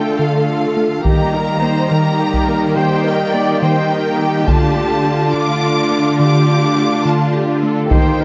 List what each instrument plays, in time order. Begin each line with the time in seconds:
Already playing: cello section D3, violin section A3 F4 G5, french horn section A3 F4, viola section A4
0.19 synth pluck D3, violin section F5
0.77 synth pluck A3
1.04 synth pluck D#3, cello section D#3, french horn section G3 D#4, violin section A#3 G4 A#5, viola section G4, taiko
1.33 synth pluck D#4, viola section A#4
1.62 synth pluck A#3, viola section C5
1.90 synth pluck D#3, viola section A#4
2.19 viola section G4
2.34 taiko
2.47 synth pluck A#3, viola section A#4
2.76 synth pluck D#3, viola section C5, violin section G5
3.04 synth pluck D#4, viola section A#4
3.33 synth pluck A#3, viola section D5
3.61 synth pluck D#3, viola section C5, violin section G5
3.90 viola section A#4
4.19 synth pluck A#3, viola section G4
4.47 cello section D3, synth pluck D3, french horn section A3 F4, violin section D4 F4 A5, taiko
4.76 synth pluck D4
5.05 synth pluck A3
5.33 synth pluck D3, viola section F4, violin section D6
5.91 synth pluck A3
6.20 synth pluck D3, viola section G4, violin section D6
6.48 synth pluck D4
6.77 synth pluck A3
7.05 synth pluck D3, viola section F4, violin section A5
7.33 viola section G4
7.63 synth pluck A3, viola section A4
7.91 cello section D#3, synth pluck D#3, violin section A#3 G4 G5, french horn section A#3 D#4, viola section C5, taiko
8.20 synth pluck D#4, viola section A#4